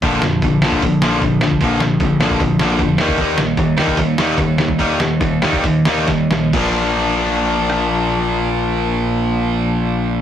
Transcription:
<<
  \new Staff \with { instrumentName = "Distorted electric guitar" } { \clef bass \time 4/4 \key bes \major \tempo 4 = 145 <bes, f bes>8 <bes, f>8 <bes, f>8 <bes, f bes>8 <bes, f>8 <bes, f bes>8 <bes, f>8 <bes, f>8 | <bes, f bes>8 <bes, f>8 <bes, f>8 <bes, f bes>8 <bes, f>8 <bes, f bes>8 <bes, f>8 <ees bes ees'>8 | <ees bes ees'>8 <ees bes>8 <ees bes>8 <ees bes ees'>8 <ees bes>8 <ees bes ees'>8 <ees bes>8 <ees bes>8 | <ees bes ees'>8 <ees bes>8 <ees bes>8 <ees bes ees'>8 <ees bes>8 <ees bes ees'>8 <ees bes>8 <ees bes>8 |
<bes, f bes>1~ | <bes, f bes>1 | }
  \new Staff \with { instrumentName = "Overdriven electric guitar" } { \clef bass \time 4/4 \key bes \major <bes, d f>8 <bes, d>8 <bes, d>8 <bes, d f>8 <bes, d>8 <bes, d f>8 <bes, d>8 <bes, d>8 | <bes, d f>8 <bes, d>8 <bes, d>8 <bes, d f>8 <bes, d>8 <bes, d f>8 <bes, d>8 <ees g bes>8 | <ees g bes>8 <ees g>8 <ees g>8 <ees g bes>8 <ees g>8 <ees g bes>8 <ees g>8 <ees g>8 | <ees g bes>8 <ees g>8 <ees g>8 <ees g bes>8 <ees g>8 <ees g bes>8 <ees g>8 <ees g>8 |
<bes, f bes d'>1~ | <bes, f bes d'>1 | }
  \new Staff \with { instrumentName = "Picked electric bass" } { \clef bass \time 4/4 \key bes \major bes,,8 f,,8 bes,,8 bes,,8 bes,,8 bes,,8 bes,,4 | bes,,8 bes,,8 bes,,8 bes,,8 bes,,8 bes,,8 f,8 ees,8 | ees,8 bes,,8 ees,8 ees,8 ees,8 ees,8 ees,4 | ees,8 ees,8 ees,8 ees,8 ees,8 ees,8 ees,8 bes,,8 |
bes,,1~ | bes,,1 | }
  \new DrumStaff \with { instrumentName = "Drums" } \drummode { \time 4/4 <hho bd>8 sn8 <hho bd>8 sn16 bd16 <hho bd>8 sn8 <hho bd>8 sn16 bd16 | <hho bd>8 sn8 <hho bd>8 sn16 bd16 <hho bd>8 sn8 <hho bd>8 sn16 bd16 | <hho bd>8 sn8 <hho bd>8 sn16 bd16 <hho bd>8 sn8 <hho bd>8 sn16 bd16 | <hho bd>8 sn8 <hho bd>8 sn16 bd16 <hho bd>8 sn8 <hho bd sn>8 sn8 |
<cymc bd>4 r4 r8 ss8 r4 | r4 r4 r4 r4 | }
>>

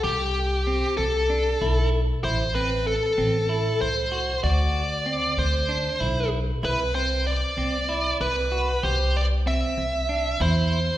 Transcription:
<<
  \new Staff \with { instrumentName = "Lead electric guitar" } { \time 7/8 \key c \lydian \tempo 4 = 96 g'4. a'4. r8 | c''8 b'8 a'4. c''4 | d''4. c''4. r8 | b'8 c''8 d''4. b'4 |
c''8 d''8 e''4. c''4 | }
  \new Staff \with { instrumentName = "Clean electric guitar" } { \time 7/8 \key c \lydian g'4 c'4 d'8 e'4 | e'8 c'4 c'8 e'4 fis'8 | fis'4 c'4 d'8 e'4 | e'8 c'4 c'8 e'4 fis'8 |
g'4 c'4 d'8 e'4 | }
  \new Staff \with { instrumentName = "Upright bass" } { \clef bass \time 7/8 \key c \lydian c,4. c,4 b,,4 | a,,4. a,,4 c,4 | d,4. d,4 b,,4 | c,4. c,4 c,4 |
c,4. c,4 e,4 | }
>>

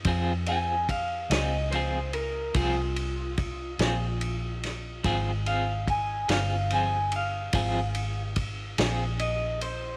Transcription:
<<
  \new Staff \with { instrumentName = "Clean electric guitar" } { \time 12/8 \key f \minor \tempo 4. = 48 r8 aes''8 f''8 ees''8 c''8 bes'8 f'2. | r8 f''8 aes''8 f''8 aes''8 f''2 r8 ees''8 c''8 | }
  \new Staff \with { instrumentName = "Clean electric guitar" } { \time 12/8 \key f \minor <f c' f' aes'>8 <c' f' aes'>8 r8 <c' f' aes'>8 <f c' f' aes'>8 r8 <f c' f' aes'>8 r4 <c' f' aes'>8 r4 | <f c' f' aes'>8 <c' f' aes'>8 r8 <c' f' aes'>8 <f c' f' aes'>8 r8 <f c' f' aes'>8 r4 <c' f' aes'>8 r4 | }
  \new Staff \with { instrumentName = "Fingered electric bass" } { \clef bass \time 12/8 \key f \minor f,4. des,4. c,4. bes,,4. | aes,,4. g,,4. aes,,4. bes,,4. | }
  \new DrumStaff \with { instrumentName = "Drums" } \drummode { \time 12/8 <bd cymr>8 cymr8 <bd cymr>8 <cymr sn>8 cymr8 cymr8 <bd cymr>8 cymr8 <bd cymr>8 <cymr sn>8 cymr8 <cymr sn>8 | <bd cymr>8 cymr8 <bd cymr>8 <cymr sn>8 cymr8 cymr8 <bd cymr>8 cymr8 <bd cymr>8 <cymr sn>8 cymr8 cymr8 | }
>>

